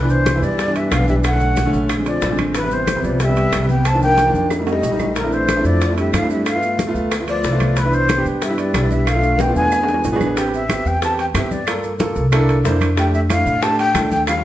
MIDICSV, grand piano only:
0, 0, Header, 1, 2, 480
1, 0, Start_track
1, 0, Key_signature, 0, "major"
1, 0, Tempo, 325910
1, 1831, Time_signature, 4, 2, 24, 8
1, 15277, Key_signature, 0, "minor"
1, 21267, End_track
2, 0, Start_track
2, 0, Title_t, "Grand piano"
2, 0, Program_c, 0, 0
2, 27, Note_on_c, 0, 52, 69
2, 32, Note_on_c, 0, 59, 65
2, 37, Note_on_c, 0, 62, 83
2, 363, Note_off_c, 0, 52, 0
2, 366, Note_off_c, 0, 59, 0
2, 369, Note_off_c, 0, 62, 0
2, 510, Note_on_c, 0, 52, 74
2, 513, Note_on_c, 0, 59, 68
2, 523, Note_on_c, 0, 64, 85
2, 846, Note_off_c, 0, 52, 0
2, 847, Note_off_c, 0, 59, 0
2, 852, Note_off_c, 0, 64, 0
2, 985, Note_on_c, 0, 52, 66
2, 992, Note_on_c, 0, 59, 65
2, 994, Note_on_c, 0, 62, 73
2, 1323, Note_off_c, 0, 52, 0
2, 1327, Note_off_c, 0, 59, 0
2, 1328, Note_off_c, 0, 62, 0
2, 1465, Note_on_c, 0, 52, 65
2, 1473, Note_on_c, 0, 59, 64
2, 1478, Note_on_c, 0, 62, 75
2, 1804, Note_off_c, 0, 52, 0
2, 1808, Note_off_c, 0, 59, 0
2, 1810, Note_off_c, 0, 62, 0
2, 1951, Note_on_c, 0, 50, 65
2, 1958, Note_on_c, 0, 57, 59
2, 1963, Note_on_c, 0, 61, 76
2, 2288, Note_off_c, 0, 50, 0
2, 2291, Note_off_c, 0, 57, 0
2, 2293, Note_off_c, 0, 61, 0
2, 2430, Note_on_c, 0, 50, 89
2, 2436, Note_on_c, 0, 57, 75
2, 2444, Note_on_c, 0, 61, 90
2, 2768, Note_off_c, 0, 50, 0
2, 2770, Note_off_c, 0, 57, 0
2, 2774, Note_off_c, 0, 61, 0
2, 2913, Note_on_c, 0, 50, 55
2, 2918, Note_on_c, 0, 56, 50
2, 2925, Note_on_c, 0, 60, 58
2, 3249, Note_off_c, 0, 50, 0
2, 3252, Note_off_c, 0, 56, 0
2, 3255, Note_off_c, 0, 60, 0
2, 3390, Note_on_c, 0, 50, 76
2, 3397, Note_on_c, 0, 56, 62
2, 3400, Note_on_c, 0, 60, 80
2, 3728, Note_off_c, 0, 50, 0
2, 3732, Note_off_c, 0, 56, 0
2, 3733, Note_off_c, 0, 60, 0
2, 3874, Note_on_c, 0, 48, 72
2, 3879, Note_on_c, 0, 55, 64
2, 3886, Note_on_c, 0, 59, 78
2, 4211, Note_off_c, 0, 48, 0
2, 4213, Note_off_c, 0, 55, 0
2, 4216, Note_off_c, 0, 59, 0
2, 4353, Note_on_c, 0, 48, 76
2, 4358, Note_on_c, 0, 55, 67
2, 4364, Note_on_c, 0, 59, 78
2, 4691, Note_off_c, 0, 48, 0
2, 4693, Note_off_c, 0, 55, 0
2, 4696, Note_off_c, 0, 59, 0
2, 4834, Note_on_c, 0, 48, 66
2, 4840, Note_on_c, 0, 55, 55
2, 4848, Note_on_c, 0, 59, 76
2, 5172, Note_off_c, 0, 48, 0
2, 5174, Note_off_c, 0, 55, 0
2, 5178, Note_off_c, 0, 59, 0
2, 5310, Note_on_c, 0, 48, 64
2, 5314, Note_on_c, 0, 55, 62
2, 5320, Note_on_c, 0, 59, 70
2, 5650, Note_off_c, 0, 48, 0
2, 5652, Note_off_c, 0, 55, 0
2, 5655, Note_off_c, 0, 59, 0
2, 5795, Note_on_c, 0, 51, 67
2, 5800, Note_on_c, 0, 53, 55
2, 5805, Note_on_c, 0, 58, 61
2, 5809, Note_on_c, 0, 62, 71
2, 6133, Note_off_c, 0, 51, 0
2, 6135, Note_off_c, 0, 53, 0
2, 6138, Note_off_c, 0, 58, 0
2, 6139, Note_off_c, 0, 62, 0
2, 6274, Note_on_c, 0, 51, 69
2, 6277, Note_on_c, 0, 53, 60
2, 6280, Note_on_c, 0, 58, 61
2, 6285, Note_on_c, 0, 62, 79
2, 6612, Note_off_c, 0, 51, 0
2, 6613, Note_off_c, 0, 53, 0
2, 6615, Note_off_c, 0, 58, 0
2, 6618, Note_off_c, 0, 62, 0
2, 6755, Note_on_c, 0, 55, 61
2, 6757, Note_on_c, 0, 57, 57
2, 6766, Note_on_c, 0, 63, 66
2, 7093, Note_off_c, 0, 55, 0
2, 7094, Note_off_c, 0, 57, 0
2, 7098, Note_off_c, 0, 63, 0
2, 7229, Note_on_c, 0, 55, 70
2, 7237, Note_on_c, 0, 57, 62
2, 7241, Note_on_c, 0, 63, 77
2, 7570, Note_off_c, 0, 55, 0
2, 7574, Note_off_c, 0, 57, 0
2, 7576, Note_off_c, 0, 63, 0
2, 7711, Note_on_c, 0, 57, 63
2, 7713, Note_on_c, 0, 60, 64
2, 7718, Note_on_c, 0, 62, 68
2, 7719, Note_on_c, 0, 64, 82
2, 8051, Note_off_c, 0, 57, 0
2, 8053, Note_off_c, 0, 60, 0
2, 8055, Note_off_c, 0, 62, 0
2, 8055, Note_off_c, 0, 64, 0
2, 8190, Note_on_c, 0, 57, 72
2, 8196, Note_on_c, 0, 60, 65
2, 8197, Note_on_c, 0, 62, 72
2, 8202, Note_on_c, 0, 64, 83
2, 8531, Note_off_c, 0, 57, 0
2, 8534, Note_off_c, 0, 60, 0
2, 8535, Note_off_c, 0, 62, 0
2, 8537, Note_off_c, 0, 64, 0
2, 8680, Note_on_c, 0, 57, 66
2, 8684, Note_on_c, 0, 60, 61
2, 8689, Note_on_c, 0, 62, 62
2, 8691, Note_on_c, 0, 64, 72
2, 9016, Note_off_c, 0, 57, 0
2, 9018, Note_off_c, 0, 60, 0
2, 9020, Note_off_c, 0, 62, 0
2, 9021, Note_off_c, 0, 64, 0
2, 9158, Note_on_c, 0, 57, 68
2, 9161, Note_on_c, 0, 60, 63
2, 9167, Note_on_c, 0, 62, 65
2, 9171, Note_on_c, 0, 64, 70
2, 9495, Note_off_c, 0, 57, 0
2, 9496, Note_off_c, 0, 60, 0
2, 9499, Note_off_c, 0, 62, 0
2, 9502, Note_off_c, 0, 64, 0
2, 9638, Note_on_c, 0, 57, 61
2, 9642, Note_on_c, 0, 59, 61
2, 9649, Note_on_c, 0, 65, 69
2, 9975, Note_off_c, 0, 57, 0
2, 9977, Note_off_c, 0, 59, 0
2, 9980, Note_off_c, 0, 65, 0
2, 10118, Note_on_c, 0, 57, 82
2, 10124, Note_on_c, 0, 59, 69
2, 10129, Note_on_c, 0, 65, 97
2, 10455, Note_off_c, 0, 57, 0
2, 10458, Note_off_c, 0, 59, 0
2, 10461, Note_off_c, 0, 65, 0
2, 10598, Note_on_c, 0, 57, 59
2, 10605, Note_on_c, 0, 59, 54
2, 10612, Note_on_c, 0, 65, 64
2, 10935, Note_off_c, 0, 57, 0
2, 10938, Note_off_c, 0, 59, 0
2, 10942, Note_off_c, 0, 65, 0
2, 11077, Note_on_c, 0, 57, 77
2, 11083, Note_on_c, 0, 59, 66
2, 11087, Note_on_c, 0, 65, 87
2, 11414, Note_off_c, 0, 57, 0
2, 11417, Note_off_c, 0, 59, 0
2, 11419, Note_off_c, 0, 65, 0
2, 11556, Note_on_c, 0, 59, 73
2, 11562, Note_on_c, 0, 62, 67
2, 11565, Note_on_c, 0, 64, 79
2, 11894, Note_off_c, 0, 59, 0
2, 11897, Note_off_c, 0, 62, 0
2, 11898, Note_off_c, 0, 64, 0
2, 12038, Note_on_c, 0, 59, 76
2, 12041, Note_on_c, 0, 62, 65
2, 12045, Note_on_c, 0, 67, 82
2, 12375, Note_off_c, 0, 59, 0
2, 12376, Note_off_c, 0, 62, 0
2, 12378, Note_off_c, 0, 67, 0
2, 12516, Note_on_c, 0, 59, 72
2, 12521, Note_on_c, 0, 62, 65
2, 12527, Note_on_c, 0, 64, 76
2, 12854, Note_off_c, 0, 59, 0
2, 12856, Note_off_c, 0, 62, 0
2, 12859, Note_off_c, 0, 64, 0
2, 12996, Note_on_c, 0, 59, 66
2, 13003, Note_on_c, 0, 62, 60
2, 13006, Note_on_c, 0, 64, 73
2, 13333, Note_off_c, 0, 59, 0
2, 13337, Note_off_c, 0, 62, 0
2, 13339, Note_off_c, 0, 64, 0
2, 13469, Note_on_c, 0, 57, 65
2, 13475, Note_on_c, 0, 62, 63
2, 13482, Note_on_c, 0, 65, 78
2, 13810, Note_off_c, 0, 57, 0
2, 13813, Note_off_c, 0, 62, 0
2, 13816, Note_off_c, 0, 65, 0
2, 13955, Note_on_c, 0, 57, 70
2, 13962, Note_on_c, 0, 62, 67
2, 13967, Note_on_c, 0, 65, 80
2, 14293, Note_off_c, 0, 57, 0
2, 14296, Note_off_c, 0, 62, 0
2, 14299, Note_off_c, 0, 65, 0
2, 14432, Note_on_c, 0, 59, 56
2, 14438, Note_on_c, 0, 62, 54
2, 14444, Note_on_c, 0, 68, 67
2, 14771, Note_off_c, 0, 59, 0
2, 14774, Note_off_c, 0, 62, 0
2, 14777, Note_off_c, 0, 68, 0
2, 14910, Note_on_c, 0, 59, 89
2, 14915, Note_on_c, 0, 62, 80
2, 14922, Note_on_c, 0, 68, 95
2, 15248, Note_off_c, 0, 59, 0
2, 15252, Note_off_c, 0, 62, 0
2, 15255, Note_off_c, 0, 68, 0
2, 15270, Note_on_c, 0, 59, 76
2, 15280, Note_on_c, 0, 60, 75
2, 15286, Note_on_c, 0, 67, 86
2, 15610, Note_off_c, 0, 59, 0
2, 15614, Note_off_c, 0, 60, 0
2, 15617, Note_off_c, 0, 67, 0
2, 15755, Note_on_c, 0, 59, 59
2, 15757, Note_on_c, 0, 60, 59
2, 15764, Note_on_c, 0, 67, 67
2, 16092, Note_off_c, 0, 59, 0
2, 16093, Note_off_c, 0, 60, 0
2, 16096, Note_off_c, 0, 67, 0
2, 16230, Note_on_c, 0, 59, 66
2, 16233, Note_on_c, 0, 60, 58
2, 16239, Note_on_c, 0, 67, 72
2, 16569, Note_off_c, 0, 59, 0
2, 16570, Note_off_c, 0, 60, 0
2, 16573, Note_off_c, 0, 67, 0
2, 16713, Note_on_c, 0, 59, 59
2, 16718, Note_on_c, 0, 60, 53
2, 16722, Note_on_c, 0, 67, 72
2, 17050, Note_off_c, 0, 59, 0
2, 17052, Note_off_c, 0, 60, 0
2, 17054, Note_off_c, 0, 67, 0
2, 17187, Note_on_c, 0, 58, 69
2, 17192, Note_on_c, 0, 65, 55
2, 17196, Note_on_c, 0, 69, 73
2, 17527, Note_off_c, 0, 58, 0
2, 17529, Note_off_c, 0, 65, 0
2, 17531, Note_off_c, 0, 69, 0
2, 17666, Note_on_c, 0, 58, 77
2, 17671, Note_on_c, 0, 65, 65
2, 17676, Note_on_c, 0, 69, 81
2, 18006, Note_off_c, 0, 58, 0
2, 18008, Note_off_c, 0, 65, 0
2, 18010, Note_off_c, 0, 69, 0
2, 18144, Note_on_c, 0, 58, 89
2, 18148, Note_on_c, 0, 62, 83
2, 18152, Note_on_c, 0, 64, 85
2, 18157, Note_on_c, 0, 69, 106
2, 18484, Note_off_c, 0, 58, 0
2, 18486, Note_off_c, 0, 62, 0
2, 18488, Note_off_c, 0, 64, 0
2, 18491, Note_off_c, 0, 69, 0
2, 18623, Note_on_c, 0, 58, 79
2, 18624, Note_on_c, 0, 62, 80
2, 18627, Note_on_c, 0, 64, 78
2, 18630, Note_on_c, 0, 72, 87
2, 18963, Note_off_c, 0, 58, 0
2, 18964, Note_off_c, 0, 62, 0
2, 18965, Note_off_c, 0, 64, 0
2, 18967, Note_off_c, 0, 72, 0
2, 19094, Note_on_c, 0, 57, 73
2, 19104, Note_on_c, 0, 62, 65
2, 19110, Note_on_c, 0, 67, 80
2, 19438, Note_off_c, 0, 57, 0
2, 19443, Note_off_c, 0, 62, 0
2, 19446, Note_off_c, 0, 67, 0
2, 19580, Note_on_c, 0, 57, 66
2, 19585, Note_on_c, 0, 62, 61
2, 19590, Note_on_c, 0, 64, 68
2, 19921, Note_off_c, 0, 57, 0
2, 19923, Note_off_c, 0, 62, 0
2, 19926, Note_off_c, 0, 64, 0
2, 20054, Note_on_c, 0, 57, 72
2, 20063, Note_on_c, 0, 62, 65
2, 20066, Note_on_c, 0, 67, 76
2, 20397, Note_off_c, 0, 57, 0
2, 20402, Note_off_c, 0, 62, 0
2, 20403, Note_off_c, 0, 67, 0
2, 20537, Note_on_c, 0, 57, 66
2, 20540, Note_on_c, 0, 62, 55
2, 20547, Note_on_c, 0, 69, 65
2, 20878, Note_off_c, 0, 57, 0
2, 20880, Note_off_c, 0, 62, 0
2, 20883, Note_off_c, 0, 69, 0
2, 21020, Note_on_c, 0, 55, 66
2, 21026, Note_on_c, 0, 61, 61
2, 21032, Note_on_c, 0, 65, 68
2, 21267, Note_off_c, 0, 55, 0
2, 21267, Note_off_c, 0, 61, 0
2, 21267, Note_off_c, 0, 65, 0
2, 21267, End_track
0, 0, End_of_file